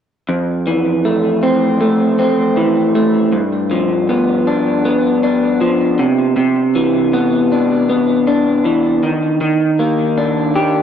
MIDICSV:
0, 0, Header, 1, 2, 480
1, 0, Start_track
1, 0, Tempo, 760167
1, 185, Time_signature, 4, 2, 24, 8
1, 6835, End_track
2, 0, Start_track
2, 0, Title_t, "Clean electric guitar"
2, 0, Program_c, 0, 27
2, 181, Note_on_c, 0, 41, 64
2, 422, Note_on_c, 0, 52, 56
2, 664, Note_on_c, 0, 57, 52
2, 902, Note_on_c, 0, 60, 54
2, 1133, Note_off_c, 0, 57, 0
2, 1141, Note_on_c, 0, 57, 56
2, 1375, Note_off_c, 0, 60, 0
2, 1382, Note_on_c, 0, 60, 52
2, 1615, Note_off_c, 0, 52, 0
2, 1623, Note_on_c, 0, 52, 54
2, 1856, Note_off_c, 0, 57, 0
2, 1864, Note_on_c, 0, 57, 57
2, 2097, Note_off_c, 0, 41, 0
2, 2100, Note_on_c, 0, 43, 70
2, 2156, Note_off_c, 0, 60, 0
2, 2157, Note_off_c, 0, 52, 0
2, 2157, Note_off_c, 0, 57, 0
2, 2343, Note_on_c, 0, 53, 54
2, 2584, Note_on_c, 0, 59, 48
2, 2823, Note_on_c, 0, 62, 54
2, 3061, Note_off_c, 0, 59, 0
2, 3064, Note_on_c, 0, 59, 61
2, 3301, Note_off_c, 0, 62, 0
2, 3304, Note_on_c, 0, 62, 53
2, 3535, Note_off_c, 0, 53, 0
2, 3543, Note_on_c, 0, 53, 49
2, 3784, Note_on_c, 0, 48, 72
2, 3835, Note_off_c, 0, 43, 0
2, 3837, Note_off_c, 0, 53, 0
2, 4011, Note_off_c, 0, 48, 0
2, 4019, Note_on_c, 0, 48, 73
2, 4038, Note_off_c, 0, 59, 0
2, 4038, Note_off_c, 0, 62, 0
2, 4265, Note_on_c, 0, 52, 56
2, 4505, Note_on_c, 0, 59, 55
2, 4746, Note_on_c, 0, 62, 54
2, 4976, Note_off_c, 0, 59, 0
2, 4984, Note_on_c, 0, 59, 55
2, 5222, Note_off_c, 0, 62, 0
2, 5224, Note_on_c, 0, 62, 57
2, 5456, Note_off_c, 0, 52, 0
2, 5464, Note_on_c, 0, 52, 52
2, 5700, Note_off_c, 0, 48, 0
2, 5703, Note_on_c, 0, 51, 75
2, 5757, Note_off_c, 0, 52, 0
2, 5757, Note_off_c, 0, 59, 0
2, 5934, Note_off_c, 0, 51, 0
2, 5942, Note_on_c, 0, 51, 71
2, 5961, Note_off_c, 0, 62, 0
2, 6183, Note_on_c, 0, 58, 54
2, 6425, Note_on_c, 0, 62, 47
2, 6665, Note_on_c, 0, 67, 55
2, 6835, Note_off_c, 0, 51, 0
2, 6835, Note_off_c, 0, 58, 0
2, 6835, Note_off_c, 0, 62, 0
2, 6835, Note_off_c, 0, 67, 0
2, 6835, End_track
0, 0, End_of_file